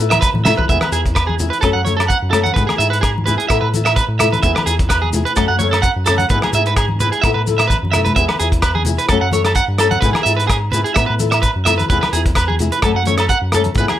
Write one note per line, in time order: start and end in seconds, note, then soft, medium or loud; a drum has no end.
0.00 0.19 A2 medium
0.00 0.16 E4 medium
0.00 0.15 A4 medium
0.00 maracas medium
0.10 0.17 E5 medium
0.10 cross-stick medium
0.10 closed hi-hat medium
0.10 high conga medium
0.10 low agogo medium
0.21 0.29 B4 loud
0.21 kick medium
0.21 closed hi-hat medium
0.21 maracas medium
0.34 0.54 A2 medium
0.34 high conga medium
0.45 0.62 E4 medium
0.45 0.61 A4 medium
0.45 0.53 E5 medium
0.45 snare medium
0.45 low conga medium
0.45 low agogo medium
0.45 maracas medium
0.57 0.64 B4 medium
0.57 floor tom medium
0.57 high conga medium
0.68 0.80 E2 medium
0.68 0.84 B3 medium
0.68 0.85 E4 medium
0.68 0.85 G#4 medium
0.68 0.77 E5 medium
0.68 kick medium
0.68 closed hi-hat soft
0.68 low conga medium
0.68 maracas medium
0.81 0.88 B4 medium
0.81 cross-stick medium
0.81 high conga medium
0.81 low agogo medium
0.92 1.51 E2 medium
0.92 1.08 E4 soft
0.92 1.07 G#4 medium
0.92 1.00 G#4 medium
0.92 closed hi-hat soft
0.92 maracas medium
1.06 kick medium
1.06 closed hi-hat soft
1.15 1.23 B4 medium
1.15 kick medium
1.15 cross-stick medium
1.15 closed hi-hat soft
1.15 low agogo medium
1.15 maracas medium
1.27 1.34 G#4 medium
1.27 high conga medium
1.39 1.56 E4 soft
1.39 1.55 G#4 medium
1.39 closed hi-hat soft
1.39 low conga medium
1.39 maracas medium
1.50 1.57 B4 medium
1.50 closed hi-hat soft
1.61 1.74 F#2 medium
1.61 1.77 F#3 medium
1.61 1.78 A3 medium
1.61 1.78 C#4 medium
1.61 1.69 A4 medium
1.61 1.78 A4 medium
1.61 kick medium
1.61 cross-stick medium
1.61 closed hi-hat soft
1.61 low agogo medium
1.61 maracas medium
1.73 2.14 F#2 medium
1.73 1.80 F#5 medium
1.85 2.02 A3 soft
1.85 2.02 C#4 soft
1.85 2.01 A4 medium
1.85 1.93 C#5 medium
1.85 closed hi-hat soft
1.85 high conga medium
1.85 maracas medium
1.97 2.04 A4 medium
1.97 cross-stick medium
1.97 closed hi-hat soft
1.97 low agogo medium
2.08 2.17 F#5 medium
2.08 kick medium
2.08 closed hi-hat soft
2.08 maracas medium
2.22 2.51 F#2 medium
2.31 2.48 A3 soft
2.31 2.48 C#4 soft
2.31 2.39 A4 medium
2.31 2.47 A4 medium
2.31 cross-stick medium
2.31 closed hi-hat soft
2.31 low conga medium
2.31 low agogo medium
2.31 maracas medium
2.44 2.51 F#5 medium
2.44 closed hi-hat soft
2.44 high conga medium
2.54 2.67 G#2 medium
2.54 2.71 B3 medium
2.54 2.71 E4 medium
2.54 2.71 G#4 medium
2.54 2.62 B4 medium
2.54 kick medium
2.54 closed hi-hat soft
2.54 low conga medium
2.54 maracas medium
2.67 2.74 G#4 medium
2.67 cross-stick medium
2.67 high conga medium
2.67 low agogo medium
2.78 3.38 G#2 medium
2.78 2.95 E4 soft
2.78 2.95 G#4 medium
2.78 2.87 E5 medium
2.78 closed hi-hat soft
2.78 maracas medium
2.90 2.97 B4 medium
2.90 closed hi-hat soft
3.01 3.10 G#4 medium
3.01 kick medium
3.01 cross-stick medium
3.01 closed hi-hat soft
3.01 low agogo medium
3.01 maracas medium
3.18 high conga medium
3.26 3.43 E4 soft
3.26 3.41 G#4 medium
3.26 3.34 B4 medium
3.26 closed hi-hat soft
3.26 low conga medium
3.26 maracas medium
3.38 3.45 G#4 medium
3.38 closed hi-hat soft
3.48 3.60 A2 loud
3.48 3.65 B3 medium
3.48 3.65 E4 medium
3.48 3.65 A4 medium
3.48 3.57 E5 medium
3.48 kick medium
3.48 cross-stick medium
3.48 closed hi-hat soft
3.48 low agogo medium
3.48 maracas medium
3.61 4.01 A2 medium
3.61 3.68 B4 medium
3.74 3.90 E4 soft
3.74 3.89 A4 medium
3.74 closed hi-hat soft
3.74 high conga medium
3.74 maracas medium
3.85 3.92 E5 medium
3.85 cross-stick medium
3.85 closed hi-hat soft
3.85 low agogo medium
3.96 4.04 B4 medium
3.96 kick medium
3.96 closed hi-hat soft
3.96 maracas medium
4.08 4.37 A2 medium
4.19 4.36 E4 soft
4.19 4.35 A4 medium
4.19 4.27 E5 medium
4.19 cross-stick medium
4.19 closed hi-hat soft
4.19 low conga medium
4.19 low agogo medium
4.19 maracas medium
4.32 4.39 B4 medium
4.32 closed hi-hat soft
4.32 high conga medium
4.43 4.54 E2 loud
4.43 4.58 B3 medium
4.43 4.59 E4 medium
4.43 4.59 G#4 medium
4.43 4.51 E5 medium
4.43 kick medium
4.43 closed hi-hat soft
4.43 low conga medium
4.43 maracas medium
4.55 4.62 B4 medium
4.55 cross-stick medium
4.55 high conga medium
4.55 low agogo medium
4.66 5.25 E2 medium
4.66 4.83 E4 soft
4.66 4.74 G#4 medium
4.66 muted nylon-string guitar stroke soft
4.66 closed hi-hat soft
4.66 maracas medium
4.79 kick medium
4.79 closed hi-hat soft
4.89 4.97 B4 medium
4.89 kick medium
4.89 cross-stick medium
4.89 closed hi-hat soft
4.89 low agogo medium
4.89 maracas medium
5.02 5.09 G#4 medium
5.02 high conga medium
5.13 5.30 E4 soft
5.13 5.29 G#4 medium
5.13 closed hi-hat soft
5.13 low conga medium
5.13 maracas medium
5.25 5.32 B4 medium
5.25 closed hi-hat soft
5.36 5.47 F#2 loud
5.36 5.51 F#3 medium
5.36 5.52 A3 medium
5.36 5.52 C#4 medium
5.36 5.44 A4 medium
5.36 5.52 A4 medium
5.36 kick medium
5.36 cross-stick medium
5.36 closed hi-hat soft
5.36 low agogo medium
5.36 maracas medium
5.48 5.88 F#2 loud
5.48 5.55 F#5 medium
5.59 5.76 C#4 medium
5.59 5.76 A4 medium
5.59 5.67 C#5 medium
5.59 closed hi-hat soft
5.59 high conga medium
5.59 maracas medium
5.63 5.76 A3 soft
5.71 5.78 A4 medium
5.71 cross-stick medium
5.71 closed hi-hat soft
5.71 low agogo medium
5.82 5.90 F#5 medium
5.82 kick medium
5.82 closed hi-hat soft
5.82 maracas medium
5.96 6.25 F#2 medium
6.06 6.23 A3 soft
6.06 6.23 C#4 soft
6.06 6.14 A4 medium
6.06 6.22 A4 medium
6.06 cross-stick medium
6.06 closed hi-hat soft
6.06 low conga medium
6.06 low agogo medium
6.06 maracas medium
6.18 6.25 F#5 medium
6.18 closed hi-hat soft
6.18 high conga medium
6.29 6.41 G#2 medium
6.29 6.46 B3 medium
6.29 6.46 E4 medium
6.29 6.46 G#4 medium
6.29 6.38 B4 medium
6.29 kick medium
6.29 closed hi-hat soft
6.29 low conga medium
6.29 maracas medium
6.42 6.50 G#4 medium
6.42 cross-stick medium
6.42 high conga medium
6.42 low agogo medium
6.53 7.12 G#2 medium
6.53 6.70 G#4 medium
6.53 6.62 E5 medium
6.53 closed hi-hat soft
6.53 low conga medium
6.53 maracas medium
6.57 6.70 E4 soft
6.66 6.73 B4 medium
6.66 closed hi-hat soft
6.66 maracas soft
6.76 6.85 G#4 medium
6.76 kick medium
6.76 cross-stick medium
6.76 closed hi-hat soft
6.76 low agogo medium
6.76 maracas medium
6.89 high conga medium
7.00 7.16 G#4 soft
7.00 7.08 B4 medium
7.00 closed hi-hat soft
7.00 low conga medium
7.00 maracas medium
7.04 7.17 E4 soft
7.12 7.19 G#4 medium
7.12 closed hi-hat soft
7.21 7.34 A2 loud
7.21 7.39 B3 medium
7.21 7.30 E5 medium
7.21 kick medium
7.21 cross-stick medium
7.21 closed hi-hat soft
7.21 low agogo medium
7.21 maracas medium
7.26 7.40 E4 medium
7.26 7.40 A4 medium
7.34 7.75 A2 medium
7.34 7.41 B4 medium
7.47 7.64 E4 soft
7.47 7.63 A4 medium
7.47 closed hi-hat soft
7.47 high conga medium
7.47 maracas medium
7.58 7.65 E5 medium
7.58 cross-stick medium
7.58 closed hi-hat soft
7.58 low agogo medium
7.58 maracas soft
7.67 7.76 B4 medium
7.67 kick medium
7.67 closed hi-hat soft
7.67 maracas medium
7.72 high conga medium
7.83 8.11 F#2 medium
7.83 high conga medium
7.92 8.09 A4 medium
7.92 8.00 E5 medium
7.92 cross-stick medium
7.92 closed hi-hat soft
7.92 low agogo medium
7.92 maracas medium
7.96 8.10 E4 soft
7.96 low conga medium
8.05 8.12 B4 medium
8.05 closed hi-hat soft
8.05 low conga medium
8.05 maracas soft
8.16 8.27 E2 medium
8.16 8.32 B3 medium
8.16 8.32 E4 medium
8.16 8.33 G#4 medium
8.16 8.24 E5 medium
8.16 kick medium
8.16 closed hi-hat soft
8.16 low conga medium
8.16 maracas medium
8.28 8.35 B4 medium
8.28 cross-stick medium
8.28 high conga medium
8.28 low agogo medium
8.39 8.99 E2 medium
8.39 8.56 E4 soft
8.39 8.47 G#4 medium
8.39 8.55 G#4 medium
8.39 closed hi-hat soft
8.39 maracas medium
8.52 kick medium
8.52 closed hi-hat soft
8.62 8.70 B4 medium
8.62 kick medium
8.62 cross-stick medium
8.62 closed hi-hat soft
8.62 low agogo medium
8.62 maracas medium
8.75 8.82 G#4 medium
8.75 high conga medium
8.85 9.03 E4 soft
8.85 9.01 G#4 medium
8.85 closed hi-hat soft
8.85 low conga medium
8.85 maracas medium
8.98 9.05 B4 medium
8.98 closed hi-hat soft
9.08 9.20 F#2 loud
9.08 9.25 F#3 medium
9.08 9.25 A3 medium
9.08 9.25 C#4 medium
9.08 9.17 A4 medium
9.08 9.26 A4 medium
9.08 kick medium
9.08 cross-stick medium
9.08 closed hi-hat soft
9.08 low agogo medium
9.08 maracas medium
9.21 9.61 F#2 loud
9.21 9.28 F#5 medium
9.31 9.49 A3 soft
9.31 9.49 C#4 soft
9.31 9.48 A4 medium
9.31 9.41 C#5 medium
9.31 closed hi-hat soft
9.31 high conga medium
9.31 maracas medium
9.45 9.52 A4 medium
9.45 cross-stick medium
9.45 closed hi-hat soft
9.45 low agogo medium
9.55 9.64 F#5 medium
9.55 kick medium
9.55 closed hi-hat soft
9.55 maracas medium
9.68 9.97 G2 medium
9.78 9.96 A3 soft
9.78 9.96 C#4 soft
9.78 9.87 A4 medium
9.78 9.95 A4 medium
9.78 cross-stick medium
9.78 closed hi-hat soft
9.78 low agogo medium
9.78 maracas medium
9.91 9.98 F#5 medium
9.91 closed hi-hat soft
9.91 high conga medium
10.01 10.13 G#2 medium
10.01 10.18 B3 medium
10.01 10.18 E4 medium
10.01 10.09 B4 medium
10.01 kick medium
10.01 closed hi-hat soft
10.01 low conga medium
10.01 maracas medium
10.05 10.19 G#4 medium
10.13 10.21 G#4 medium
10.13 cross-stick medium
10.13 high conga medium
10.13 low agogo medium
10.23 10.84 G#2 medium
10.23 10.41 G#4 medium
10.23 10.32 E5 medium
10.23 closed hi-hat soft
10.23 maracas medium
10.29 10.42 E4 soft
10.37 10.44 B4 medium
10.37 closed hi-hat soft
10.47 10.56 G#4 medium
10.47 kick medium
10.47 cross-stick medium
10.47 closed hi-hat soft
10.47 low agogo medium
10.47 maracas medium
10.72 10.88 G#4 medium
10.72 10.80 B4 medium
10.72 closed hi-hat soft
10.72 low conga medium
10.72 maracas medium
10.76 10.89 E4 soft
10.84 10.91 G#4 medium
10.84 closed hi-hat soft
10.94 11.07 A2 medium
10.94 11.11 B3 medium
10.94 11.11 E4 medium
10.94 11.03 E5 medium
10.94 kick medium
10.94 cross-stick medium
10.94 closed hi-hat soft
10.94 low agogo medium
10.94 maracas medium
10.98 muted nylon-string guitar stroke medium
11.06 11.48 A2 loud
11.06 11.14 B4 medium
11.19 11.36 E4 soft
11.19 11.35 A4 medium
11.19 closed hi-hat soft
11.19 high conga medium
11.19 maracas medium
11.31 11.38 E5 medium
11.31 cross-stick medium
11.31 closed hi-hat soft
11.31 low agogo medium
11.42 11.50 B4 medium
11.42 kick medium
11.42 closed hi-hat soft
11.42 maracas medium
11.56 11.84 F#2 medium
11.65 11.81 A4 medium
11.65 11.73 E5 medium
11.65 cross-stick medium
11.65 closed hi-hat soft
11.65 low conga medium
11.65 low agogo medium
11.65 maracas medium
11.69 11.83 E4 soft
11.78 11.85 B4 medium
11.78 closed hi-hat soft
11.78 high conga medium
11.90 12.00 E2 medium
11.90 12.05 B3 medium
11.90 12.05 E4 medium
11.90 12.05 G#4 medium
11.90 11.97 B4 medium
11.90 kick medium
11.90 closed hi-hat soft
11.90 low conga medium
11.90 maracas medium
12.01 12.08 B4 medium
12.01 cross-stick medium
12.01 high conga medium
12.01 low agogo medium
12.13 12.71 E2 medium
12.13 12.29 E4 soft
12.13 12.21 G#4 medium
12.13 12.28 G#4 medium
12.13 closed hi-hat soft
12.13 maracas medium
12.26 kick medium
12.26 closed hi-hat soft
12.35 12.44 B4 medium
12.35 kick medium
12.35 cross-stick medium
12.35 closed hi-hat soft
12.35 low agogo medium
12.35 maracas medium
12.48 12.55 G#4 medium
12.48 high conga medium
12.59 12.75 E4 soft
12.59 12.74 G#4 medium
12.59 closed hi-hat soft
12.59 low conga medium
12.59 maracas medium
12.72 12.79 B4 medium
12.72 closed hi-hat soft
12.82 12.93 F#2 medium
12.82 12.98 F#3 medium
12.82 12.98 A3 medium
12.82 12.91 A4 medium
12.82 12.98 A4 medium
12.82 muted nylon-string guitar stroke medium
12.82 kick medium
12.82 cross-stick medium
12.82 closed hi-hat soft
12.82 low agogo medium
12.82 maracas medium
12.94 13.33 F#2 loud
12.94 13.02 F#5 medium
13.05 13.22 A3 soft
13.05 13.21 C#4 medium
13.05 13.21 A4 medium
13.05 13.14 C#5 medium
13.05 closed hi-hat soft
13.05 high conga medium
13.05 maracas medium
13.18 13.25 A4 medium
13.18 cross-stick medium
13.18 closed hi-hat soft
13.18 low agogo medium
13.29 13.37 F#5 medium
13.29 kick medium
13.29 closed hi-hat soft
13.29 maracas medium
13.41 13.70 F#2 medium
13.52 13.68 C#4 medium
13.52 13.68 A4 medium
13.52 13.62 A4 medium
13.52 cross-stick medium
13.52 closed hi-hat soft
13.52 low conga medium
13.52 low agogo medium
13.52 maracas medium
13.56 13.69 A3 soft
13.64 closed hi-hat soft
13.64 high conga medium
13.75 13.86 G#2 medium
13.75 13.92 B3 medium
13.75 13.85 B4 medium
13.75 kick medium
13.75 closed hi-hat soft
13.75 low conga medium
13.75 maracas medium
13.79 13.92 E4 medium
13.79 13.92 G#4 medium
13.88 13.96 G#4 medium
13.88 cross-stick medium
13.88 high conga medium
13.88 low agogo medium